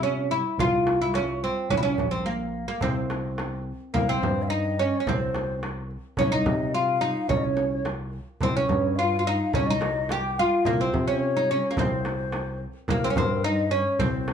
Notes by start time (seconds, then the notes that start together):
Already playing: C3
0.03 C#4
0.18 darbuka ka
0.31 E4, darbuka ka
0.46 darbuka ka
0.58 C2 F4, frame drum, darbuka dum
0.87 darbuka tek, frame drum
1.01 E4, darbuka ka
1.14 C#4, darbuka tek, frame drum
1.42 C4, darbuka ka
1.57 darbuka ka
1.70 C2 C#4, darbuka dum, frame drum
1.77 E4
1.83 C#4, darbuka ka
1.98 A#1, darbuka dum, frame drum
2.11 C4
2.26 A#3
2.54 darbuka ka
2.68 A#3, darbuka ka
2.81 C2 C4, darbuka dum, frame drum
2.96 darbuka ka
3.10 darbuka tek, frame drum
3.24 darbuka ka
3.38 darbuka tek, frame drum
3.80 darbuka ka
3.94 C2 A#3 A#4, darbuka dum, frame drum
4.08 C4 C5, darbuka ka
4.22 G2, darbuka dum, frame drum
4.43 F5
4.48 D#4 D#5
4.79 C#4
4.93 darbuka ka
4.97 C#4 C#5
5.06 C2 C4 C5, darbuka dum, frame drum
5.21 darbuka ka
5.34 darbuka tek, frame drum
5.63 darbuka tek, frame drum
5.91 darbuka ka
6.17 C2 C#4 C#5, darbuka dum, frame drum
6.32 D#4 D#5, darbuka ka
6.46 C3, frame drum, darbuka dum
6.74 F4 F5
7.01 D#4
7.16 darbuka ka
7.29 C2 C#4 C#5, frame drum, darbuka dum
7.36 D#5
7.44 C#5, darbuka ka
7.57 frame drum
7.73 C#5
7.85 darbuka tek, frame drum
8.13 darbuka ka
8.41 C2 C4 C5, darbuka dum, frame drum
8.55 C#4 C#5, darbuka ka
8.69 G2, darbuka dum, frame drum
8.96 F4 F5
9.19 F4
9.25 D#4, darbuka ka
9.40 darbuka ka
9.53 C2 C#4 C#5, frame drum, darbuka dum
9.67 D#4 D#5, darbuka ka
9.81 darbuka tek, frame drum
10.09 G4 G5, darbuka tek, frame drum
10.38 F4 F5, darbuka ka
10.65 C2 A#3 A#4, frame drum, darbuka dum
10.81 C4 C5, darbuka ka
10.94 C3, frame drum, darbuka dum
11.08 C#4 C#5
11.36 D#4, darbuka ka
11.51 C#4
11.64 darbuka ka
11.71 A#3 C#5
11.77 C2 C4 C5, darbuka dum, frame drum
12.05 darbuka tek, frame drum
12.19 darbuka ka
12.32 darbuka tek, frame drum
12.60 darbuka ka
12.73 darbuka ka
12.88 C2 A#3 A#4, darbuka dum, frame drum
13.02 C4, darbuka ka
13.10 C#4
13.16 G2 C4, darbuka dum, frame drum
13.44 D#4 D#5
13.71 C#4 C#5, darbuka ka
13.85 darbuka ka
13.99 C2 C4 C5, darbuka dum, frame drum
14.14 darbuka ka
14.28 darbuka tek, frame drum